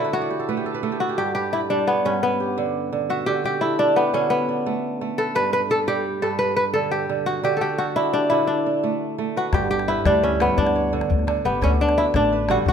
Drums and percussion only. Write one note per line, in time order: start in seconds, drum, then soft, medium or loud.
9.53 calabash thump medium
9.53 calabash click medium
9.79 calabash click soft
9.97 calabash click soft
10.06 calabash thump medium
10.06 calabash click medium
10.40 calabash click medium
10.49 calabash click soft
10.58 calabash thump medium
10.58 calabash click soft
10.67 calabash click soft
11.01 calabash click soft
11.11 calabash thump medium
11.19 calabash click soft
11.28 calabash click medium
11.37 calabash click soft
11.63 calabash thump medium
11.63 calabash click medium
11.89 calabash click soft
12.06 calabash click soft
12.14 calabash thump medium
12.14 calabash click medium
12.49 calabash click medium
12.58 calabash click soft
12.66 calabash thump medium
12.66 calabash click soft